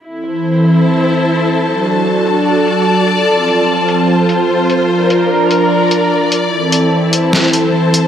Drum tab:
HH |-x-x-x-x|-x-x-x-x|-x-x-x-x|-x-x-x-x|
SD |--------|--------|--------|--------|

HH |-x-x-x-x|
SD |----o---|